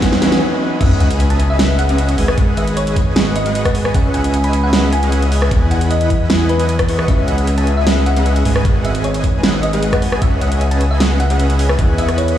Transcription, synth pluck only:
0.02 F#5
0.22 F#5
0.81 E5
1.00 F#5
1.30 A5
1.50 E5
1.79 F#5
2.58 E5
2.77 C#5
3.36 D#5
3.66 F#5
3.95 F#5
4.14 G#5
4.44 B5
4.64 F#5
4.93 G#5
5.71 F#5
5.91 D#5
6.49 B4
6.79 B4
7.08 E5
7.28 F#5
7.58 A5
7.77 E5
8.06 F#5
8.85 E5
9.04 C#5
9.63 D#5
9.93 F#5
10.22 E5
10.41 F#5
10.71 A5
10.91 E5
11.20 F#5
11.98 E5
12.18 C#5

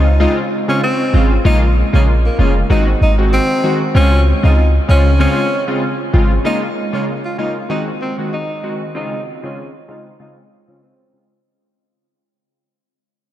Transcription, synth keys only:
0.19 C#3 G#3 C4 F4
0.68 C#3 G#3 C4 F4
1.13 C#3 G#3 C4 F4
1.44 C#3 G#3 A#3 F4
1.93 C#3 G#3 A#3 F4
2.38 C#3 G#3 A#3 F4
2.70 D#3 G#3 C4 F#4
3.18 D#3 G#3 C4 F#4
3.63 D#3 G#3 C4 F#4
3.94 C#3 G#3 C4 F4
4.43 C#3 G#3 C4 F4
4.88 C#3 G#3 C4 F4
5.19 C#3 G#3 C4 F4
5.67 C#3 G#3 C4 F4
6.13 C#3 G#3 C4 F4
6.44 C#3 G#3 A#3 F4
6.93 C#3 G#3 A#3 F4
7.38 C#3 G#3 A#3 F4
7.69 D#3 G#3 C4 F#4
8.18 D#3 G#3 C4 F#4
8.63 D#3 G#3 C4 F#4
8.95 C#3 G#3 C4 F4
9.43 C#3 G#3 C4 F4
9.88 C#3 G#3 C4 F4
10.19 C#3 G#3 C4 F4
10.67 C#3 G#3 C4 F4
11.13 C#3 G#3 C4 F4

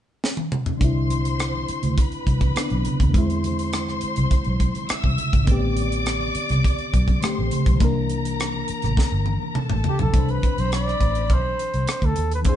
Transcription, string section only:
0.79 C5 C6
1.97 B4 B5
3.15 C5 C6
4.89 E5 E6
5.47 D5 D6
7.21 C5 C6
7.81 A#4 A#5
9.55 A4 A5
10.13 C5 B5
12.45 G#4 G#5

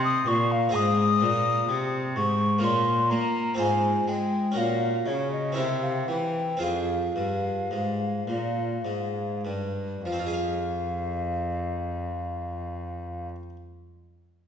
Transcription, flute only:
0.05 D#6
0.28 C#6
0.52 F5
0.75 D#6
2.16 C#6
2.63 C6
3.10 A#5
3.59 G#5
4.08 G5
4.57 F5
5.07 C#5
5.33 D#5
5.58 E5
5.83 F5
6.09 G5
6.63 F5
10.04 F5

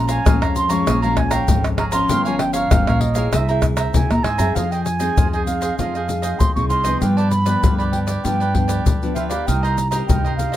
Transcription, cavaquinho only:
0.07 C#5 F5 A#5
0.25 G#4 C#5 F5 A#5
0.42 C#5 F5 A#5
0.69 C#5 F5 A#5
0.87 G#4 C#5 F5 A#5
1.02 C#5 F5 A#5
1.16 muted cavaquinho stroke
1.31 C#5 F5 A#5
1.77 G#4 C#5 F5 A#5
1.92 C#5 F5 A#5
2.09 G4 A#4 C#5 F5
2.25 A#4 C#5 F5
2.39 muted cavaquinho stroke
2.53 A#4 C#5 F5
2.70 G4 A#4 C#5 F5
2.87 A#4 C#5 F5
3.15 A#4 C#5 F5
3.33 G#4 C5 E5 A#5
3.49 C5 E5 A#5
3.62 muted cavaquinho stroke
3.77 C5 E5 A#5
4.24 G#4 C5 E5 A#5
4.38 C5 E5 A#5
4.56 F4 G#4 C5 D#5
4.72 G#4 C5 D#5
4.86 muted cavaquinho stroke
4.99 G#4 C5 D#5
5.17 F4 G#4 C5 D#5
5.33 G#4 C5 D#5
5.61 G#4 C5 D#5
5.79 F4 G#4 C5 D#5
5.95 G#4 C5 D#5
6.08 muted cavaquinho stroke
6.22 G#4 C5 D#5
6.69 F4 G#4 C5 D#5
6.84 G#4 C5 D#5
7.02 F4 G4 B4 D5
7.17 G4 B4 D5
7.32 muted cavaquinho stroke
7.45 G4 B4 D5
7.63 F4 G4 B4 D5
7.78 G4 B4 D5
8.07 G4 B4 D5
8.24 F4 G4 B4 D5
8.40 G4 B4 D5
8.54 muted cavaquinho stroke
8.68 G4 B4 D5
9.15 F4 G4 B4 D5
9.30 G4 B4 D5
9.47 D#4 A#4 C5 D#5
9.63 A#4 C5 D#5
9.77 muted cavaquinho stroke
9.91 A#4 C5 D#5
10.09 D#4 A#4 C5 D#5
10.24 A#4 C5 D#5
10.52 C5 D#5

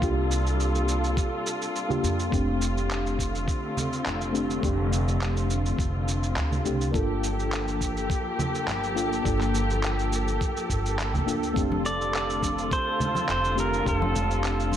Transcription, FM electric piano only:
Already playing: F4 G4
0.00 A#3 D4 F4 G4
1.89 A#3 D4 F4 G4
2.30 A3 C4 D4 G4
4.32 A3 C4 D4 G4
4.61 A3 C4 D4 G4
6.64 A3 C4 D4 G4
6.91 A#3 D4 F4 A4
8.95 A#3 D4 F4 A4
9.24 A#3 D4 F4 A4
11.26 A#3 D4 F4 A4
11.53 A3 C4 D4
11.57 G4
13.55 A3 C4 D4 G4
13.83 A3 C4 D4 G4

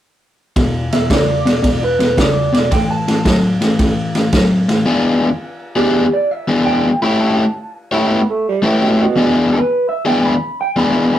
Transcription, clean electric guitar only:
0.93 E5
1.11 D5
1.84 B4
2.20 D5
2.54 D5
2.73 G5
2.91 A5
5.77 G4
6.13 D5
6.31 E5
6.65 G5
7.02 B5
7.20 A5
9.53 B4
9.89 E5
10.07 G5
10.26 B5
10.61 G5
10.78 B5
11.15 B5

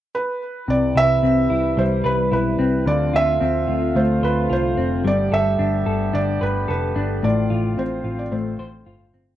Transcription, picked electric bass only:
0.68 C2
0.96 C2
1.23 C2
1.50 C2
1.78 C2
2.05 C2
2.32 B1
2.59 C2
2.86 D2
3.13 D2
3.41 D2
3.68 D2
3.95 D2
4.22 D2
4.50 C2
4.77 F1
5.04 G1
5.32 G1
5.59 G1
5.86 G1
6.14 G1
6.42 G1
6.69 F1
6.96 G1
7.23 A1
7.51 A1
7.78 A1
8.04 A1
8.32 A1
8.59 A1
8.87 G1
9.13 G1

